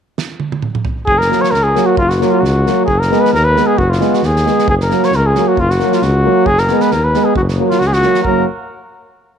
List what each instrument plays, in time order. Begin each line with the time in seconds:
0.18 snare
0.40 high tom
0.52 high tom
0.62 mid tom
0.75 mid tom
0.85 floor tom
1.06 tuba F#1, cornet G#4, kick
1.18 cornet A#4, snare
1.29 euphonium F#3, french horn A#3, snare
1.42 cornet C#5, snare
1.51 tuba C#2, cornet A#4, snare
1.63 cornet G#4
1.75 euphonium F#3, french horn A#3, snare
1.86 cornet F#4
1.97 tuba F#1, cornet F4, kick
2.09 cornet F#4, snare
2.20 euphonium F#3, french horn A#3, snare
2.31 cornet F4
2.40 tuba C#2, cornet F#4
2.45 snare
2.66 euphonium F#3, french horn A#3, snare
2.86 tuba F#1, cornet G#4, kick
2.99 cornet A#4, snare
3.10 euphonium G#3, french horn B3, snare
3.21 cornet B4, snare
3.33 tuba D#2, cornet A#4, snare
3.45 cornet B4
3.55 euphonium G#3, french horn B3, snare
3.67 cornet G#4
3.77 tuba F#1, cornet F#4, kick
3.90 cornet F4, snare
4.00 euphonium G#3, french horn B3, snare
4.14 cornet F#4, snare
4.22 tuba D#2, cornet G#4, snare
4.36 snare
4.44 euphonium G#3, french horn B3, snare
4.59 snare
4.66 tuba F#1, cornet G#4, kick
4.80 cornet A#4, snare
4.89 euphonium F#3, french horn A#3, snare
5.03 cornet C#5, snare
5.12 tuba C#2, snare
5.16 cornet A#4
5.27 cornet G#4
5.35 euphonium F#3, french horn A#3, snare
5.48 cornet F#4
5.57 tuba F#1, cornet F4, kick
5.70 cornet F#4, snare
5.80 euphonium F#3, french horn A#3, snare
5.92 cornet F4, snare
6.02 tuba C#2, cornet F#4, snare
6.24 euphonium F#3, french horn A#3
6.46 tuba F#1, cornet G#4, kick
6.58 cornet A#4, snare
6.68 euphonium G#3, french horn B3, snare
6.80 cornet B4, snare
6.91 tuba D#2, cornet A#4, snare
7.04 cornet B4
7.14 euphonium G#3, french horn B3, snare
7.25 cornet G#4
7.35 tuba F#1, cornet F#4, kick
7.49 snare
7.58 euphonium F#3, french horn A#3
7.70 cornet F4, snare
7.79 tuba C#2, cornet F#4, snare
7.87 cornet G#4
7.93 cornet F#4, snare
8.02 euphonium F#3, french horn A#3, snare
8.15 snare
8.23 tuba F#1, euphonium F#3, french horn A#3, cornet A#4, kick